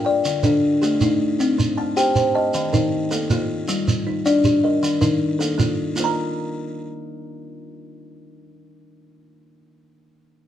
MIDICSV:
0, 0, Header, 1, 4, 480
1, 0, Start_track
1, 0, Key_signature, -2, "major"
1, 0, Tempo, 381437
1, 1748, Time_signature, 12, 3, 24, 8
1, 13184, End_track
2, 0, Start_track
2, 0, Title_t, "Kalimba"
2, 0, Program_c, 0, 108
2, 0, Note_on_c, 0, 70, 73
2, 60, Note_on_c, 0, 79, 63
2, 305, Note_off_c, 0, 70, 0
2, 545, Note_on_c, 0, 50, 73
2, 545, Note_on_c, 0, 69, 66
2, 783, Note_off_c, 0, 79, 0
2, 1026, Note_off_c, 0, 50, 0
2, 1027, Note_on_c, 0, 67, 67
2, 1267, Note_off_c, 0, 69, 0
2, 1270, Note_on_c, 0, 57, 84
2, 1748, Note_off_c, 0, 67, 0
2, 1749, Note_off_c, 0, 57, 0
2, 1750, Note_on_c, 0, 63, 63
2, 1992, Note_on_c, 0, 60, 76
2, 2230, Note_off_c, 0, 63, 0
2, 2234, Note_on_c, 0, 81, 64
2, 2471, Note_off_c, 0, 60, 0
2, 2472, Note_on_c, 0, 72, 62
2, 2701, Note_off_c, 0, 72, 0
2, 2717, Note_on_c, 0, 72, 72
2, 2939, Note_off_c, 0, 81, 0
2, 2954, Note_on_c, 0, 81, 59
2, 3194, Note_off_c, 0, 72, 0
2, 3432, Note_on_c, 0, 51, 78
2, 3434, Note_on_c, 0, 70, 65
2, 3673, Note_off_c, 0, 81, 0
2, 3911, Note_off_c, 0, 51, 0
2, 3913, Note_on_c, 0, 69, 64
2, 4153, Note_off_c, 0, 70, 0
2, 4156, Note_on_c, 0, 58, 82
2, 4632, Note_off_c, 0, 69, 0
2, 4634, Note_off_c, 0, 58, 0
2, 4640, Note_on_c, 0, 65, 60
2, 4876, Note_on_c, 0, 55, 73
2, 5116, Note_off_c, 0, 65, 0
2, 5118, Note_on_c, 0, 63, 65
2, 5353, Note_off_c, 0, 55, 0
2, 5596, Note_on_c, 0, 67, 70
2, 5834, Note_off_c, 0, 63, 0
2, 5835, Note_on_c, 0, 75, 60
2, 6074, Note_off_c, 0, 67, 0
2, 6306, Note_on_c, 0, 70, 62
2, 6309, Note_on_c, 0, 51, 78
2, 6552, Note_off_c, 0, 75, 0
2, 6783, Note_on_c, 0, 69, 60
2, 6790, Note_off_c, 0, 51, 0
2, 7020, Note_on_c, 0, 58, 75
2, 7028, Note_off_c, 0, 70, 0
2, 7483, Note_off_c, 0, 58, 0
2, 7498, Note_on_c, 0, 58, 64
2, 7499, Note_on_c, 0, 65, 62
2, 7506, Note_off_c, 0, 69, 0
2, 7550, Note_on_c, 0, 70, 69
2, 7600, Note_on_c, 0, 82, 73
2, 7984, Note_off_c, 0, 65, 0
2, 12007, Note_off_c, 0, 58, 0
2, 12059, Note_off_c, 0, 70, 0
2, 12109, Note_off_c, 0, 82, 0
2, 13184, End_track
3, 0, Start_track
3, 0, Title_t, "Kalimba"
3, 0, Program_c, 1, 108
3, 0, Note_on_c, 1, 77, 68
3, 76, Note_on_c, 1, 74, 65
3, 310, Note_off_c, 1, 77, 0
3, 319, Note_on_c, 1, 50, 78
3, 551, Note_off_c, 1, 74, 0
3, 555, Note_on_c, 1, 62, 63
3, 793, Note_off_c, 1, 50, 0
3, 1043, Note_on_c, 1, 57, 81
3, 1272, Note_off_c, 1, 62, 0
3, 1284, Note_on_c, 1, 63, 62
3, 1516, Note_off_c, 1, 57, 0
3, 1764, Note_on_c, 1, 60, 79
3, 1997, Note_off_c, 1, 63, 0
3, 2237, Note_off_c, 1, 60, 0
3, 2240, Note_on_c, 1, 81, 62
3, 2477, Note_on_c, 1, 67, 84
3, 2478, Note_on_c, 1, 79, 72
3, 2954, Note_off_c, 1, 67, 0
3, 2955, Note_off_c, 1, 81, 0
3, 2962, Note_on_c, 1, 75, 61
3, 3194, Note_off_c, 1, 79, 0
3, 3202, Note_on_c, 1, 51, 82
3, 3436, Note_off_c, 1, 75, 0
3, 3442, Note_on_c, 1, 63, 64
3, 3676, Note_off_c, 1, 51, 0
3, 3925, Note_on_c, 1, 58, 80
3, 4156, Note_off_c, 1, 63, 0
3, 4166, Note_on_c, 1, 65, 63
3, 4398, Note_off_c, 1, 58, 0
3, 4634, Note_on_c, 1, 55, 71
3, 4879, Note_off_c, 1, 65, 0
3, 5113, Note_off_c, 1, 55, 0
3, 5356, Note_on_c, 1, 62, 81
3, 5357, Note_on_c, 1, 74, 64
3, 5834, Note_off_c, 1, 62, 0
3, 5844, Note_on_c, 1, 70, 58
3, 6074, Note_off_c, 1, 74, 0
3, 6076, Note_on_c, 1, 51, 80
3, 6308, Note_on_c, 1, 63, 65
3, 6317, Note_off_c, 1, 70, 0
3, 6553, Note_off_c, 1, 51, 0
3, 6803, Note_on_c, 1, 58, 76
3, 7029, Note_off_c, 1, 63, 0
3, 7034, Note_on_c, 1, 65, 60
3, 7276, Note_off_c, 1, 58, 0
3, 7515, Note_on_c, 1, 58, 63
3, 7566, Note_on_c, 1, 70, 65
3, 7614, Note_on_c, 1, 82, 65
3, 7751, Note_off_c, 1, 65, 0
3, 12025, Note_off_c, 1, 58, 0
3, 12075, Note_off_c, 1, 70, 0
3, 12124, Note_off_c, 1, 82, 0
3, 13184, End_track
4, 0, Start_track
4, 0, Title_t, "Shekere"
4, 312, Note_on_c, 9, 82, 52
4, 438, Note_off_c, 9, 82, 0
4, 542, Note_on_c, 9, 82, 72
4, 668, Note_off_c, 9, 82, 0
4, 1042, Note_on_c, 9, 82, 52
4, 1167, Note_off_c, 9, 82, 0
4, 1270, Note_on_c, 9, 82, 66
4, 1396, Note_off_c, 9, 82, 0
4, 1762, Note_on_c, 9, 82, 50
4, 1888, Note_off_c, 9, 82, 0
4, 2006, Note_on_c, 9, 82, 63
4, 2132, Note_off_c, 9, 82, 0
4, 2482, Note_on_c, 9, 82, 53
4, 2608, Note_off_c, 9, 82, 0
4, 2710, Note_on_c, 9, 82, 65
4, 2836, Note_off_c, 9, 82, 0
4, 3195, Note_on_c, 9, 82, 51
4, 3320, Note_off_c, 9, 82, 0
4, 3445, Note_on_c, 9, 82, 71
4, 3571, Note_off_c, 9, 82, 0
4, 3919, Note_on_c, 9, 82, 53
4, 4044, Note_off_c, 9, 82, 0
4, 4153, Note_on_c, 9, 82, 72
4, 4279, Note_off_c, 9, 82, 0
4, 4637, Note_on_c, 9, 82, 57
4, 4762, Note_off_c, 9, 82, 0
4, 4881, Note_on_c, 9, 82, 73
4, 5007, Note_off_c, 9, 82, 0
4, 5360, Note_on_c, 9, 82, 58
4, 5486, Note_off_c, 9, 82, 0
4, 5590, Note_on_c, 9, 82, 71
4, 5716, Note_off_c, 9, 82, 0
4, 6082, Note_on_c, 9, 82, 53
4, 6208, Note_off_c, 9, 82, 0
4, 6313, Note_on_c, 9, 82, 74
4, 6439, Note_off_c, 9, 82, 0
4, 6806, Note_on_c, 9, 82, 52
4, 6932, Note_off_c, 9, 82, 0
4, 7040, Note_on_c, 9, 82, 78
4, 7165, Note_off_c, 9, 82, 0
4, 7505, Note_on_c, 9, 82, 75
4, 7631, Note_off_c, 9, 82, 0
4, 13184, End_track
0, 0, End_of_file